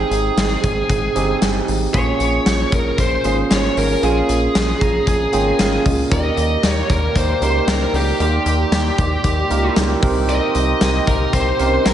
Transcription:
0.00 1.15 C4 medium
0.00 1.15 D#4 medium
0.00 1.16 G4 medium
0.00 1.16 G#4 medium
0.00 1.38 G#4 medium
0.00 0.56 G5 medium
0.11 0.30 G#1 loud
0.11 closed hi-hat medium
0.37 0.56 G#1 loud
0.37 snare loud
0.37 closed hi-hat medium
0.64 0.82 G#1 loud
0.64 kick medium
0.64 closed hi-hat medium
0.89 1.08 G#1 loud
0.89 kick medium
0.89 closed hi-hat medium
1.15 1.35 G1 medium
1.15 1.69 C4 medium
1.15 1.69 D#4 medium
1.15 1.69 G4 medium
1.15 1.69 G#4 medium
1.15 closed hi-hat medium
1.42 1.61 G1 medium
1.42 snare loud
1.42 closed hi-hat medium
1.68 1.87 G#1 medium
1.68 open hi-hat medium
1.93 2.13 A#1 loud
1.93 2.64 A#3 medium
1.93 2.65 C#4 medium
1.93 2.65 F4 medium
1.93 2.65 G#4 medium
1.93 2.75 C#5 loud
1.93 kick loud
1.93 closed hi-hat medium
2.20 2.39 A#1 loud
2.20 closed hi-hat medium
2.46 2.65 A#1 medium
2.46 snare loud
2.46 closed hi-hat medium
2.72 2.91 A#1 loud
2.72 3.00 A#4 medium
2.72 kick medium
2.72 closed hi-hat medium
2.98 3.17 A#1 loud
2.98 3.24 C5 medium
2.98 kick medium
2.98 closed hi-hat medium
3.24 3.43 G#1 medium
3.24 3.77 A#3 medium
3.24 3.78 C#4 medium
3.24 3.78 F4 medium
3.24 3.78 G#4 medium
3.24 3.33 C5 medium
3.24 closed hi-hat medium
3.51 3.70 G#1 medium
3.51 3.76 C#5 medium
3.51 snare medium
3.51 closed hi-hat medium
3.77 3.96 G#1 medium
3.77 4.04 A#4 medium
3.77 open hi-hat medium
4.02 4.22 A#1 loud
4.02 4.73 A#3 medium
4.02 4.74 C#4 medium
4.02 4.74 F4 medium
4.02 4.74 G#4 medium
4.02 5.82 G#4 medium
4.02 closed hi-hat medium
4.29 4.48 A#1 loud
4.29 closed hi-hat medium
4.55 4.74 A#1 loud
4.55 snare loud
4.55 closed hi-hat medium
4.81 5.00 A#1 loud
4.81 5.06 A#5 medium
4.81 kick medium
4.81 closed hi-hat medium
5.07 5.26 A#1 loud
5.07 5.32 G#5 medium
5.07 kick medium
5.07 closed hi-hat medium
5.32 5.52 G#1 medium
5.32 5.86 A#3 medium
5.32 5.86 C#4 medium
5.32 5.86 F4 medium
5.32 5.87 G#4 medium
5.32 5.57 G5 medium
5.32 closed hi-hat medium
5.59 5.78 G#1 medium
5.59 5.84 F5 medium
5.59 snare medium
5.59 closed hi-hat loud
5.85 6.04 C#2 medium
5.85 6.10 D#5 medium
5.85 kick medium
5.85 open hi-hat medium
6.10 6.30 D#2 loud
6.10 11.94 D#3 medium
6.10 9.99 G3 medium
6.10 6.82 A#3 medium
6.10 8.18 A#3 medium
6.10 6.82 D#4 medium
6.10 6.18 F4 medium
6.10 11.94 G4 medium
6.10 6.82 A#4 medium
6.10 6.71 D#5 loud
6.10 kick loud
6.10 closed hi-hat medium
6.17 6.85 G4 medium
6.37 6.56 D#2 loud
6.37 closed hi-hat medium
6.63 6.82 D#2 medium
6.63 snare loud
6.63 closed hi-hat loud
6.71 6.92 C#5 loud
6.90 7.09 D#2 loud
6.90 7.17 A#4 medium
6.90 kick medium
6.90 closed hi-hat medium
7.15 7.34 D#2 loud
7.15 7.41 C5 medium
7.15 kick medium
7.15 closed hi-hat medium
7.41 7.60 C#2 medium
7.41 7.95 A#3 medium
7.41 7.95 D#4 medium
7.41 7.95 G4 medium
7.41 7.95 A#4 medium
7.41 7.67 C5 medium
7.41 closed hi-hat medium
7.67 7.86 C#2 medium
7.67 7.95 A#4 medium
7.67 snare loud
7.67 closed hi-hat loud
7.93 8.12 C#2 loud
7.93 8.19 G4 medium
7.93 open hi-hat medium
8.19 8.39 D#2 medium
8.19 8.91 A#3 medium
8.19 11.94 C4 medium
8.19 8.91 D#4 medium
8.19 8.91 G4 medium
8.19 9.74 G4 medium
8.19 8.91 A#4 medium
8.19 closed hi-hat medium
8.46 8.65 D#2 loud
8.46 closed hi-hat medium
8.72 8.91 D#2 loud
8.72 snare loud
8.72 closed hi-hat medium
8.98 9.17 D#2 loud
8.98 kick medium
8.98 closed hi-hat medium
9.24 9.43 D#2 loud
9.24 kick medium
9.24 closed hi-hat medium
9.50 9.69 C#2 medium
9.50 10.02 A#3 medium
9.50 10.01 D#4 medium
9.50 9.57 F4 medium
9.50 10.02 A#4 medium
9.50 closed hi-hat medium
9.57 10.01 G4 medium
9.76 9.95 C#2 medium
9.76 snare loud
9.76 closed hi-hat medium
10.02 10.40 C2 medium
10.02 11.94 A#3 medium
10.02 10.86 C4 medium
10.02 10.86 D#4 medium
10.02 10.86 G4 medium
10.02 10.87 A#4 medium
10.02 kick loud
10.02 open hi-hat medium
10.29 11.10 D#5 loud
10.29 closed hi-hat medium
10.55 10.74 C2 loud
10.55 closed hi-hat medium
10.81 11.00 C2 loud
10.81 snare loud
10.81 closed hi-hat medium
11.07 11.26 C2 loud
11.07 11.34 A#4 medium
11.07 kick medium
11.07 closed hi-hat medium
11.33 11.52 C2 loud
11.33 11.58 C5 medium
11.33 kick medium
11.33 closed hi-hat medium
11.59 11.78 C2 medium
11.59 11.94 C4 medium
11.59 11.66 C#4 medium
11.59 11.94 G4 medium
11.59 11.94 A#4 medium
11.59 11.86 C5 medium
11.59 closed hi-hat medium
11.65 11.94 D#4 medium
11.85 11.94 A#1 medium
11.85 11.94 A#4 medium
11.85 snare loud
11.85 closed hi-hat medium

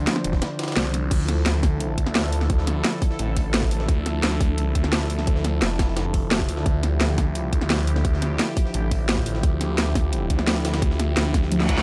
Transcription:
0.00 1.07 D3 medium
0.00 1.07 F3 medium
0.00 1.07 D4 medium
0.00 1.09 C5 medium
0.07 snare loud
0.07 closed hi-hat medium
0.16 snare medium
0.24 0.40 E1 loud
0.24 closed hi-hat loud
0.24 closed hi-hat medium
0.33 kick medium
0.33 snare soft
0.42 snare loud
0.42 snare medium
0.42 closed hi-hat medium
0.59 snare medium
0.59 closed hi-hat loud
0.59 closed hi-hat medium
0.63 snare medium
0.63 closed hi-hat medium
0.68 snare medium
0.68 closed hi-hat medium
0.72 snare medium
0.72 closed hi-hat medium
0.76 1.10 C2 loud
0.76 snare loud
0.76 closed hi-hat medium
0.94 snare soft
0.94 closed hi-hat medium
0.94 closed hi-hat loud
1.11 1.44 D2 loud
1.11 11.82 D3 medium
1.11 11.82 F3 medium
1.11 11.82 E4 medium
1.11 6.64 A4 medium
1.11 kick loud
1.11 closed hi-hat medium
1.11 crash loud
1.28 snare medium
1.28 closed hi-hat loud
1.28 closed hi-hat medium
1.46 1.96 D2 loud
1.46 snare loud
1.46 closed hi-hat medium
1.63 kick loud
1.63 snare medium
1.63 closed hi-hat medium
1.63 open hi-hat medium
1.80 closed hi-hat medium
1.98 2.83 D2 loud
1.98 kick medium
1.98 closed hi-hat medium
1.98 closed hi-hat loud
2.06 snare medium
2.15 snare loud
2.15 closed hi-hat medium
2.24 snare soft
2.33 closed hi-hat medium
2.33 open hi-hat medium
2.41 snare soft
2.50 kick loud
2.50 closed hi-hat medium
2.59 snare soft
2.67 snare medium
2.67 closed hi-hat loud
2.67 closed hi-hat medium
2.84 snare loud
2.84 closed hi-hat medium
3.02 kick loud
3.02 closed hi-hat medium
3.02 open hi-hat medium
3.11 snare soft
3.19 3.87 A1 loud
3.19 closed hi-hat medium
3.37 kick medium
3.37 closed hi-hat medium
3.37 open hi-hat medium
3.54 snare loud
3.54 closed hi-hat medium
3.63 kick medium
3.63 snare soft
3.71 closed hi-hat medium
3.71 open hi-hat medium
3.80 snare soft
3.89 4.22 D2 loud
3.89 kick loud
3.89 closed hi-hat medium
4.06 snare medium
4.06 closed hi-hat medium
4.23 4.74 D2 loud
4.23 snare loud
4.23 closed hi-hat medium
4.41 kick loud
4.41 closed hi-hat medium
4.41 open hi-hat medium
4.58 closed hi-hat medium
4.75 5.61 D2 loud
4.75 kick medium
4.75 closed hi-hat medium
4.84 snare medium
4.93 snare loud
4.93 closed hi-hat medium
5.01 snare medium
5.10 closed hi-hat medium
5.10 open hi-hat medium
5.19 snare soft
5.27 kick loud
5.27 closed hi-hat medium
5.36 snare soft
5.45 snare soft
5.45 closed hi-hat medium
5.62 6.47 F1 loud
5.62 snare loud
5.62 closed hi-hat medium
5.79 kick loud
5.79 snare loud
5.79 snare medium
5.79 closed hi-hat medium
5.79 open hi-hat medium
5.88 snare soft
5.97 snare loud
5.97 closed hi-hat medium
6.14 kick medium
6.14 closed hi-hat medium
6.14 open hi-hat medium
6.31 snare loud
6.31 closed hi-hat medium
6.40 kick medium
6.40 snare soft
6.49 6.65 D2 loud
6.49 closed hi-hat medium
6.49 open hi-hat medium
6.57 snare soft
6.66 6.99 D2 loud
6.66 11.82 G4 medium
6.66 kick loud
6.66 closed hi-hat medium
6.83 snare soft
6.83 closed hi-hat medium
7.01 7.51 D2 loud
7.01 snare loud
7.01 closed hi-hat medium
7.18 kick loud
7.18 snare medium
7.18 closed hi-hat medium
7.18 open hi-hat medium
7.35 closed hi-hat medium
7.53 8.38 D2 loud
7.53 kick medium
7.53 closed hi-hat medium
7.61 snare medium
7.70 snare loud
7.70 closed hi-hat medium
7.79 snare soft
7.87 closed hi-hat medium
7.87 open hi-hat medium
7.96 snare soft
8.05 kick loud
8.05 closed hi-hat medium
8.14 snare soft
8.22 snare soft
8.22 closed hi-hat loud
8.22 closed hi-hat medium
8.39 snare loud
8.39 closed hi-hat medium
8.57 kick loud
8.57 closed hi-hat medium
8.57 open hi-hat medium
8.66 snare soft
8.74 9.42 A1 loud
8.74 closed hi-hat medium
8.91 kick medium
8.91 closed hi-hat medium
8.91 open hi-hat medium
9.09 snare loud
9.09 closed hi-hat medium
9.17 kick medium
9.17 snare soft
9.26 closed hi-hat medium
9.26 open hi-hat medium
9.35 snare soft
9.43 9.77 D2 loud
9.43 kick loud
9.43 closed hi-hat medium
9.61 snare soft
9.61 closed hi-hat medium
9.61 closed hi-hat loud
9.78 10.29 D2 loud
9.78 snare loud
9.78 closed hi-hat medium
9.95 kick loud
9.95 snare medium
9.95 closed hi-hat medium
9.95 open hi-hat medium
10.13 closed hi-hat medium
10.30 11.15 D2 loud
10.30 kick medium
10.30 closed hi-hat medium
10.39 snare medium
10.47 snare loud
10.47 closed hi-hat medium
10.56 snare soft
10.65 snare loud
10.65 closed hi-hat medium
10.65 open hi-hat medium
10.74 snare loud
10.74 snare soft
10.74 closed hi-hat medium
10.82 kick loud
10.82 closed hi-hat medium
10.91 snare soft
11.00 snare medium
11.00 closed hi-hat loud
11.00 closed hi-hat medium
11.17 11.50 D2 loud
11.17 snare loud
11.17 closed hi-hat medium
11.34 kick loud
11.34 snare medium
11.34 closed hi-hat medium
11.34 open hi-hat medium
11.43 snare soft
11.52 11.82 D2 loud
11.52 closed hi-hat medium
11.52 high tom medium
11.52 reverse cymbal medium
11.60 snare medium
11.69 kick medium
11.69 snare loud
11.69 closed hi-hat medium
11.69 closed hi-hat loud
11.78 snare medium

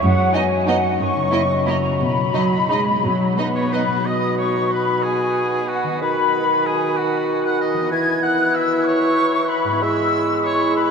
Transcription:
0.03 0.27 F#2 medium
0.03 0.99 F#2 soft
0.03 0.33 F#5 medium
0.18 2.16 F#3 soft
0.33 0.42 B3 soft
0.33 0.66 D#4 soft
0.33 0.42 D#4 soft
0.33 0.42 D#5 soft
0.33 0.67 G#5 medium
0.51 1.48 D#5 soft
0.67 0.76 B3 soft
0.67 0.75 D#4 soft
0.67 2.33 D#4 soft
0.67 0.76 D#5 soft
0.67 1.00 F#5 medium
0.84 1.02 B3 soft
0.99 2.02 F#2 soft
0.99 1.26 F#2 medium
0.99 1.65 C#6 medium
1.16 2.02 C#3 soft
1.32 1.40 A#3 soft
1.32 1.40 E4 soft
1.32 1.66 E4 soft
1.32 1.41 D#5 soft
1.50 2.51 D#5 soft
1.66 1.75 A#3 soft
1.66 1.74 E4 soft
1.66 2.02 E4 soft
1.66 1.76 D#5 soft
1.66 1.99 A#5 soft
1.84 2.02 A#3 soft
2.00 3.03 B2 soft
2.00 2.27 B2 soft
2.00 3.32 B5 medium
2.17 3.19 F#3 soft
2.34 2.68 F#3 soft
2.34 2.42 D#4 soft
2.34 2.69 D#4 soft
2.34 2.43 D#5 soft
2.52 3.54 D#5 soft
2.69 3.04 G#3 soft
2.69 2.77 D#4 soft
2.69 3.36 D#4 soft
2.69 2.79 D#5 soft
2.87 3.88 B3 soft
3.04 3.31 B2 soft
3.04 3.86 B2 soft
3.04 3.38 F#3 soft
3.20 6.03 F#3 soft
3.37 4.06 B3 soft
3.37 3.72 D#4 soft
3.37 3.46 D#4 soft
3.37 3.46 D#5 soft
3.55 3.74 C#5 soft
3.55 7.46 D#5 soft
3.55 3.61 C#6 soft
3.72 3.80 D#4 soft
3.72 7.63 D#4 soft
3.72 4.07 B4 soft
3.72 3.81 D#5 soft
3.72 4.05 B5 soft
3.87 5.94 B2 soft
3.87 3.91 B3 soft
3.92 5.87 B3 soft
3.96 5.91 F#4 soft
4.01 6.03 B2 soft
4.01 5.96 B4 soft
4.05 5.98 F#4 soft
4.05 4.37 D#5 soft
4.05 4.38 D#6 medium
4.38 4.73 C#5 soft
4.38 4.71 C#6 soft
4.71 5.04 B4 soft
4.71 5.03 B5 medium
5.02 5.70 G#4 medium
5.02 5.69 G#5 medium
5.68 6.01 F#4 soft
5.68 6.02 F#5 soft
5.83 7.84 D#3 soft
5.88 7.77 B3 soft
5.93 7.88 F#4 soft
5.97 7.86 B4 soft
6.01 7.91 D#3 soft
6.01 7.88 F#4 soft
6.01 6.68 B4 soft
6.01 6.65 B5 medium
6.66 6.98 G#4 soft
6.66 6.97 G#5 medium
6.97 7.46 F#4 soft
6.97 7.23 F#5 medium
7.45 7.61 F#5 medium
7.45 7.61 F#6 medium
7.61 7.91 D#5 soft
7.61 7.92 D#6 medium
7.74 9.74 E3 soft
7.78 9.68 B3 soft
7.83 9.72 E4 soft
7.87 9.77 B4 soft
7.91 9.83 E3 soft
7.91 9.79 E4 soft
7.91 8.22 G#5 medium
7.91 8.22 G#6 medium
8.23 8.57 F#5 medium
8.23 8.56 F#6 medium
8.55 8.86 E5 medium
8.55 8.86 E6 medium
8.86 9.51 C#5 medium
8.86 9.49 C#6 medium
9.50 9.81 B4 soft
9.50 9.82 B5 medium
9.64 10.91 G#2 soft
9.69 10.91 B3 soft
9.73 10.91 E4 soft
9.78 10.91 B4 soft
9.82 10.91 G#3 medium
9.82 10.91 E4 medium
9.82 10.22 E5 medium
9.82 10.46 E6 medium
10.45 10.74 C#5 medium
10.45 10.76 C#6 medium
10.76 10.91 B4 medium
10.76 10.91 B5 medium

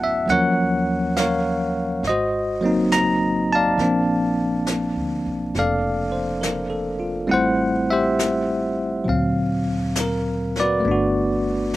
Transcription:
0.00 0.24 A1 medium
0.00 0.25 F#3 medium
0.00 0.28 A3 soft
0.00 0.28 B3 soft
0.00 0.28 C#4 soft
0.00 0.29 E4 medium
0.00 0.29 F#4 soft
0.00 0.04 E5 medium
0.00 0.28 E5 medium
0.00 0.30 F#5 medium
0.00 0.30 A5 medium
0.26 2.00 D#2 medium
0.26 2.03 F#3 soft
0.26 2.04 A#3 soft
0.26 1.13 F#5 medium
0.26 brush sweep soft
0.26 snare soft
0.30 2.06 F3 medium
0.30 2.05 C#4 soft
0.30 1.18 A#4 medium
0.30 1.19 C#5 medium
1.17 2.02 A#4 medium
1.17 2.02 C#5 medium
1.17 2.00 F5 medium
1.17 snare soft
1.17 hi-hat pedal soft
2.03 3.75 G#1 medium
2.03 brush sweep soft
2.03 snare soft
2.07 3.78 F#4 medium
2.07 3.78 C5 medium
2.07 2.96 D#5 medium
2.61 3.78 F#3 medium
2.61 3.79 A#3 medium
2.61 3.80 C4 medium
2.66 3.81 D#4 medium
2.92 3.47 A#5 medium
2.92 snare soft
2.92 hi-hat pedal soft
3.53 5.25 D5 medium
3.53 5.24 F5 medium
3.53 5.23 A5 medium
3.78 4.91 A#1 medium
3.78 7.30 F3 medium
3.78 7.31 A#3 soft
3.78 7.27 C4 soft
3.78 brush sweep soft
3.78 snare soft
3.83 7.32 D4 medium
4.67 snare soft
4.67 hi-hat pedal soft
4.96 5.23 D2 medium
5.26 5.53 B1 medium
5.54 7.26 F1 medium
5.54 6.69 A4 medium
5.54 brush sweep soft
5.54 snare soft
5.59 7.28 D5 medium
5.59 7.29 F5 medium
6.12 6.58 C5 soft
6.41 6.97 A#4 soft
6.41 snare soft
6.41 hi-hat pedal soft
6.70 7.16 A4 soft
7.00 7.46 F4 soft
7.27 9.03 A1 medium
7.27 9.06 G3 medium
7.27 9.06 A3 soft
7.27 9.06 C4 soft
7.27 9.07 E4 medium
7.27 brush sweep soft
7.31 7.92 C5 medium
7.31 7.86 F#5 medium
7.91 9.04 G4 medium
7.91 9.05 C5 medium
7.91 9.04 E5 medium
8.19 snare soft
8.19 hi-hat pedal soft
9.04 10.81 D2 medium
9.04 10.84 A#2 soft
9.04 10.84 F#3 medium
9.04 10.86 C4 soft
9.04 brush sweep soft
9.09 10.86 F5 medium
9.95 snare soft
9.95 hi-hat pedal medium
10.00 10.54 A#4 medium
10.56 snare soft
10.60 10.90 F#4 soft
10.60 11.76 B4 medium
10.60 11.76 D5 medium
10.80 11.76 A3 medium
10.85 11.76 G1 medium
10.85 11.76 B3 soft
10.85 11.76 D4 medium
10.85 brush sweep soft
10.91 11.76 F#4 medium

